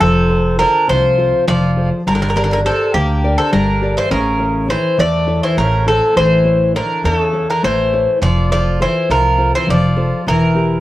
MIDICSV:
0, 0, Header, 1, 5, 480
1, 0, Start_track
1, 0, Tempo, 585938
1, 15, Time_signature, 7, 3, 24, 8
1, 8848, End_track
2, 0, Start_track
2, 0, Title_t, "Bouzouki"
2, 0, Program_c, 0, 25
2, 5, Note_on_c, 0, 69, 98
2, 479, Note_off_c, 0, 69, 0
2, 482, Note_on_c, 0, 70, 97
2, 710, Note_off_c, 0, 70, 0
2, 731, Note_on_c, 0, 72, 99
2, 1178, Note_off_c, 0, 72, 0
2, 1213, Note_on_c, 0, 74, 104
2, 1546, Note_off_c, 0, 74, 0
2, 1699, Note_on_c, 0, 70, 94
2, 1750, Note_off_c, 0, 70, 0
2, 1760, Note_on_c, 0, 70, 72
2, 1806, Note_off_c, 0, 70, 0
2, 1816, Note_on_c, 0, 70, 79
2, 1873, Note_off_c, 0, 70, 0
2, 1882, Note_on_c, 0, 70, 69
2, 1929, Note_off_c, 0, 70, 0
2, 1939, Note_on_c, 0, 70, 81
2, 1986, Note_off_c, 0, 70, 0
2, 1996, Note_on_c, 0, 70, 70
2, 2055, Note_off_c, 0, 70, 0
2, 2072, Note_on_c, 0, 70, 83
2, 2125, Note_off_c, 0, 70, 0
2, 2177, Note_on_c, 0, 69, 93
2, 2397, Note_off_c, 0, 69, 0
2, 2409, Note_on_c, 0, 67, 89
2, 2743, Note_off_c, 0, 67, 0
2, 2767, Note_on_c, 0, 69, 88
2, 2879, Note_off_c, 0, 69, 0
2, 2888, Note_on_c, 0, 70, 91
2, 3255, Note_off_c, 0, 70, 0
2, 3258, Note_on_c, 0, 72, 93
2, 3365, Note_off_c, 0, 72, 0
2, 3369, Note_on_c, 0, 70, 93
2, 3846, Note_off_c, 0, 70, 0
2, 3849, Note_on_c, 0, 72, 93
2, 4072, Note_off_c, 0, 72, 0
2, 4094, Note_on_c, 0, 74, 92
2, 4448, Note_off_c, 0, 74, 0
2, 4451, Note_on_c, 0, 72, 82
2, 4561, Note_off_c, 0, 72, 0
2, 4571, Note_on_c, 0, 70, 86
2, 4793, Note_off_c, 0, 70, 0
2, 4816, Note_on_c, 0, 69, 87
2, 5036, Note_off_c, 0, 69, 0
2, 5054, Note_on_c, 0, 72, 94
2, 5498, Note_off_c, 0, 72, 0
2, 5537, Note_on_c, 0, 70, 91
2, 5774, Note_off_c, 0, 70, 0
2, 5778, Note_on_c, 0, 70, 89
2, 5868, Note_off_c, 0, 70, 0
2, 5868, Note_on_c, 0, 69, 89
2, 6142, Note_off_c, 0, 69, 0
2, 6146, Note_on_c, 0, 70, 88
2, 6250, Note_off_c, 0, 70, 0
2, 6260, Note_on_c, 0, 72, 99
2, 6702, Note_off_c, 0, 72, 0
2, 6740, Note_on_c, 0, 74, 101
2, 6969, Note_off_c, 0, 74, 0
2, 6979, Note_on_c, 0, 74, 95
2, 7221, Note_off_c, 0, 74, 0
2, 7224, Note_on_c, 0, 72, 89
2, 7441, Note_off_c, 0, 72, 0
2, 7464, Note_on_c, 0, 70, 88
2, 7794, Note_off_c, 0, 70, 0
2, 7824, Note_on_c, 0, 72, 89
2, 7941, Note_off_c, 0, 72, 0
2, 7948, Note_on_c, 0, 74, 93
2, 8388, Note_off_c, 0, 74, 0
2, 8422, Note_on_c, 0, 70, 92
2, 8848, Note_off_c, 0, 70, 0
2, 8848, End_track
3, 0, Start_track
3, 0, Title_t, "Nylon-string guitar"
3, 0, Program_c, 1, 24
3, 0, Note_on_c, 1, 53, 68
3, 237, Note_on_c, 1, 65, 53
3, 239, Note_on_c, 1, 69, 46
3, 244, Note_on_c, 1, 72, 57
3, 467, Note_off_c, 1, 65, 0
3, 471, Note_off_c, 1, 53, 0
3, 474, Note_off_c, 1, 69, 0
3, 476, Note_on_c, 1, 65, 48
3, 478, Note_off_c, 1, 72, 0
3, 484, Note_on_c, 1, 69, 42
3, 488, Note_on_c, 1, 72, 54
3, 716, Note_on_c, 1, 48, 68
3, 866, Note_off_c, 1, 65, 0
3, 871, Note_off_c, 1, 69, 0
3, 873, Note_off_c, 1, 72, 0
3, 966, Note_on_c, 1, 65, 55
3, 971, Note_on_c, 1, 69, 50
3, 976, Note_on_c, 1, 72, 58
3, 1189, Note_off_c, 1, 48, 0
3, 1206, Note_on_c, 1, 53, 70
3, 1352, Note_off_c, 1, 65, 0
3, 1355, Note_off_c, 1, 69, 0
3, 1358, Note_off_c, 1, 72, 0
3, 1443, Note_on_c, 1, 65, 55
3, 1448, Note_on_c, 1, 69, 51
3, 1456, Note_on_c, 1, 72, 59
3, 1638, Note_off_c, 1, 65, 0
3, 1641, Note_off_c, 1, 69, 0
3, 1646, Note_off_c, 1, 72, 0
3, 1673, Note_off_c, 1, 53, 0
3, 1697, Note_on_c, 1, 55, 68
3, 1930, Note_on_c, 1, 67, 53
3, 1934, Note_on_c, 1, 70, 46
3, 1940, Note_on_c, 1, 74, 61
3, 2158, Note_off_c, 1, 67, 0
3, 2159, Note_off_c, 1, 55, 0
3, 2164, Note_off_c, 1, 70, 0
3, 2165, Note_off_c, 1, 74, 0
3, 2168, Note_on_c, 1, 67, 46
3, 2173, Note_on_c, 1, 70, 45
3, 2177, Note_on_c, 1, 74, 57
3, 2410, Note_on_c, 1, 50, 72
3, 2552, Note_off_c, 1, 67, 0
3, 2556, Note_off_c, 1, 70, 0
3, 2556, Note_off_c, 1, 74, 0
3, 2650, Note_on_c, 1, 67, 54
3, 2654, Note_on_c, 1, 70, 52
3, 2656, Note_on_c, 1, 74, 62
3, 2875, Note_off_c, 1, 50, 0
3, 2882, Note_on_c, 1, 55, 69
3, 3033, Note_off_c, 1, 67, 0
3, 3036, Note_off_c, 1, 70, 0
3, 3036, Note_off_c, 1, 74, 0
3, 3125, Note_on_c, 1, 67, 52
3, 3131, Note_on_c, 1, 70, 50
3, 3136, Note_on_c, 1, 74, 61
3, 3318, Note_off_c, 1, 67, 0
3, 3322, Note_off_c, 1, 70, 0
3, 3324, Note_off_c, 1, 74, 0
3, 3351, Note_off_c, 1, 55, 0
3, 3361, Note_on_c, 1, 61, 70
3, 3593, Note_on_c, 1, 64, 50
3, 3597, Note_on_c, 1, 69, 47
3, 3600, Note_on_c, 1, 73, 59
3, 3820, Note_off_c, 1, 64, 0
3, 3823, Note_off_c, 1, 73, 0
3, 3826, Note_off_c, 1, 69, 0
3, 3829, Note_on_c, 1, 64, 45
3, 3830, Note_off_c, 1, 61, 0
3, 3836, Note_on_c, 1, 69, 43
3, 3836, Note_on_c, 1, 73, 55
3, 4072, Note_on_c, 1, 52, 69
3, 4221, Note_off_c, 1, 64, 0
3, 4223, Note_off_c, 1, 73, 0
3, 4224, Note_off_c, 1, 69, 0
3, 4316, Note_on_c, 1, 64, 55
3, 4322, Note_on_c, 1, 69, 48
3, 4322, Note_on_c, 1, 73, 61
3, 4545, Note_off_c, 1, 52, 0
3, 4562, Note_on_c, 1, 57, 71
3, 4705, Note_off_c, 1, 64, 0
3, 4706, Note_off_c, 1, 69, 0
3, 4708, Note_off_c, 1, 73, 0
3, 4804, Note_on_c, 1, 64, 52
3, 4807, Note_on_c, 1, 69, 51
3, 4811, Note_on_c, 1, 73, 56
3, 5030, Note_off_c, 1, 57, 0
3, 5045, Note_on_c, 1, 52, 69
3, 5189, Note_off_c, 1, 64, 0
3, 5192, Note_off_c, 1, 69, 0
3, 5193, Note_off_c, 1, 73, 0
3, 5278, Note_on_c, 1, 64, 50
3, 5281, Note_on_c, 1, 69, 47
3, 5285, Note_on_c, 1, 73, 54
3, 5512, Note_off_c, 1, 52, 0
3, 5518, Note_off_c, 1, 64, 0
3, 5518, Note_off_c, 1, 69, 0
3, 5525, Note_off_c, 1, 73, 0
3, 5527, Note_on_c, 1, 64, 51
3, 5529, Note_on_c, 1, 69, 44
3, 5535, Note_on_c, 1, 73, 53
3, 5763, Note_on_c, 1, 52, 65
3, 5912, Note_off_c, 1, 64, 0
3, 5912, Note_off_c, 1, 69, 0
3, 5916, Note_off_c, 1, 73, 0
3, 6004, Note_on_c, 1, 64, 53
3, 6008, Note_on_c, 1, 69, 50
3, 6013, Note_on_c, 1, 73, 60
3, 6232, Note_off_c, 1, 52, 0
3, 6247, Note_on_c, 1, 57, 69
3, 6390, Note_off_c, 1, 64, 0
3, 6393, Note_off_c, 1, 69, 0
3, 6394, Note_off_c, 1, 73, 0
3, 6495, Note_on_c, 1, 64, 52
3, 6499, Note_on_c, 1, 69, 49
3, 6502, Note_on_c, 1, 73, 61
3, 6685, Note_off_c, 1, 64, 0
3, 6688, Note_off_c, 1, 69, 0
3, 6688, Note_off_c, 1, 73, 0
3, 6714, Note_off_c, 1, 57, 0
3, 6735, Note_on_c, 1, 53, 69
3, 6964, Note_on_c, 1, 65, 52
3, 6968, Note_on_c, 1, 69, 46
3, 6971, Note_on_c, 1, 72, 56
3, 7197, Note_off_c, 1, 65, 0
3, 7199, Note_off_c, 1, 53, 0
3, 7203, Note_off_c, 1, 69, 0
3, 7203, Note_off_c, 1, 72, 0
3, 7207, Note_on_c, 1, 65, 50
3, 7211, Note_on_c, 1, 69, 44
3, 7215, Note_on_c, 1, 72, 55
3, 7451, Note_on_c, 1, 48, 71
3, 7593, Note_off_c, 1, 65, 0
3, 7596, Note_off_c, 1, 69, 0
3, 7597, Note_off_c, 1, 72, 0
3, 7681, Note_on_c, 1, 65, 54
3, 7685, Note_on_c, 1, 69, 48
3, 7688, Note_on_c, 1, 72, 64
3, 7918, Note_off_c, 1, 48, 0
3, 7918, Note_on_c, 1, 53, 70
3, 8070, Note_off_c, 1, 65, 0
3, 8073, Note_off_c, 1, 69, 0
3, 8074, Note_off_c, 1, 72, 0
3, 8162, Note_on_c, 1, 65, 55
3, 8166, Note_on_c, 1, 69, 51
3, 8168, Note_on_c, 1, 72, 57
3, 8359, Note_off_c, 1, 65, 0
3, 8360, Note_off_c, 1, 69, 0
3, 8362, Note_off_c, 1, 72, 0
3, 8391, Note_off_c, 1, 53, 0
3, 8408, Note_on_c, 1, 52, 69
3, 8639, Note_on_c, 1, 64, 52
3, 8643, Note_on_c, 1, 67, 48
3, 8649, Note_on_c, 1, 70, 56
3, 8848, Note_off_c, 1, 52, 0
3, 8848, Note_off_c, 1, 64, 0
3, 8848, Note_off_c, 1, 67, 0
3, 8848, Note_off_c, 1, 70, 0
3, 8848, End_track
4, 0, Start_track
4, 0, Title_t, "Bouzouki"
4, 0, Program_c, 2, 25
4, 13, Note_on_c, 2, 48, 79
4, 460, Note_off_c, 2, 48, 0
4, 493, Note_on_c, 2, 50, 81
4, 716, Note_off_c, 2, 50, 0
4, 730, Note_on_c, 2, 53, 85
4, 1178, Note_off_c, 2, 53, 0
4, 1209, Note_on_c, 2, 53, 89
4, 1544, Note_off_c, 2, 53, 0
4, 1696, Note_on_c, 2, 50, 78
4, 1749, Note_off_c, 2, 50, 0
4, 1759, Note_on_c, 2, 50, 60
4, 1813, Note_off_c, 2, 50, 0
4, 1822, Note_on_c, 2, 50, 71
4, 1861, Note_off_c, 2, 50, 0
4, 1871, Note_on_c, 2, 50, 63
4, 1921, Note_off_c, 2, 50, 0
4, 1930, Note_on_c, 2, 50, 67
4, 1989, Note_off_c, 2, 50, 0
4, 1999, Note_on_c, 2, 50, 60
4, 2047, Note_off_c, 2, 50, 0
4, 2057, Note_on_c, 2, 50, 69
4, 2116, Note_off_c, 2, 50, 0
4, 2179, Note_on_c, 2, 48, 75
4, 2397, Note_off_c, 2, 48, 0
4, 2411, Note_on_c, 2, 58, 74
4, 2745, Note_off_c, 2, 58, 0
4, 2767, Note_on_c, 2, 48, 72
4, 2879, Note_off_c, 2, 48, 0
4, 2891, Note_on_c, 2, 50, 82
4, 3224, Note_off_c, 2, 50, 0
4, 3251, Note_on_c, 2, 52, 76
4, 3361, Note_off_c, 2, 52, 0
4, 3373, Note_on_c, 2, 49, 73
4, 3818, Note_off_c, 2, 49, 0
4, 3852, Note_on_c, 2, 52, 77
4, 4073, Note_off_c, 2, 52, 0
4, 4088, Note_on_c, 2, 57, 80
4, 4423, Note_off_c, 2, 57, 0
4, 4453, Note_on_c, 2, 52, 75
4, 4562, Note_off_c, 2, 52, 0
4, 4585, Note_on_c, 2, 49, 78
4, 4800, Note_off_c, 2, 49, 0
4, 4822, Note_on_c, 2, 48, 73
4, 5039, Note_off_c, 2, 48, 0
4, 5066, Note_on_c, 2, 52, 82
4, 5504, Note_off_c, 2, 52, 0
4, 5543, Note_on_c, 2, 50, 75
4, 5760, Note_off_c, 2, 50, 0
4, 5776, Note_on_c, 2, 49, 75
4, 6108, Note_off_c, 2, 49, 0
4, 6140, Note_on_c, 2, 50, 72
4, 6247, Note_off_c, 2, 50, 0
4, 6261, Note_on_c, 2, 52, 78
4, 6703, Note_off_c, 2, 52, 0
4, 6732, Note_on_c, 2, 53, 79
4, 6954, Note_off_c, 2, 53, 0
4, 6983, Note_on_c, 2, 53, 80
4, 7200, Note_off_c, 2, 53, 0
4, 7224, Note_on_c, 2, 52, 76
4, 7441, Note_off_c, 2, 52, 0
4, 7458, Note_on_c, 2, 53, 73
4, 7790, Note_off_c, 2, 53, 0
4, 7828, Note_on_c, 2, 52, 71
4, 7932, Note_off_c, 2, 52, 0
4, 7949, Note_on_c, 2, 53, 83
4, 8389, Note_off_c, 2, 53, 0
4, 8432, Note_on_c, 2, 52, 80
4, 8848, Note_off_c, 2, 52, 0
4, 8848, End_track
5, 0, Start_track
5, 0, Title_t, "Upright bass"
5, 0, Program_c, 3, 32
5, 13, Note_on_c, 3, 29, 96
5, 516, Note_off_c, 3, 29, 0
5, 735, Note_on_c, 3, 36, 88
5, 1070, Note_off_c, 3, 36, 0
5, 1211, Note_on_c, 3, 29, 91
5, 1547, Note_off_c, 3, 29, 0
5, 1693, Note_on_c, 3, 31, 93
5, 2195, Note_off_c, 3, 31, 0
5, 2410, Note_on_c, 3, 38, 95
5, 2745, Note_off_c, 3, 38, 0
5, 2892, Note_on_c, 3, 31, 90
5, 3226, Note_off_c, 3, 31, 0
5, 3368, Note_on_c, 3, 33, 97
5, 3872, Note_off_c, 3, 33, 0
5, 4084, Note_on_c, 3, 40, 94
5, 4421, Note_off_c, 3, 40, 0
5, 4569, Note_on_c, 3, 33, 88
5, 4904, Note_off_c, 3, 33, 0
5, 5051, Note_on_c, 3, 33, 92
5, 5554, Note_off_c, 3, 33, 0
5, 5769, Note_on_c, 3, 40, 91
5, 6105, Note_off_c, 3, 40, 0
5, 6257, Note_on_c, 3, 33, 89
5, 6590, Note_off_c, 3, 33, 0
5, 6734, Note_on_c, 3, 29, 98
5, 7238, Note_off_c, 3, 29, 0
5, 7452, Note_on_c, 3, 36, 88
5, 7788, Note_off_c, 3, 36, 0
5, 7935, Note_on_c, 3, 29, 92
5, 8271, Note_off_c, 3, 29, 0
5, 8415, Note_on_c, 3, 28, 92
5, 8848, Note_off_c, 3, 28, 0
5, 8848, End_track
0, 0, End_of_file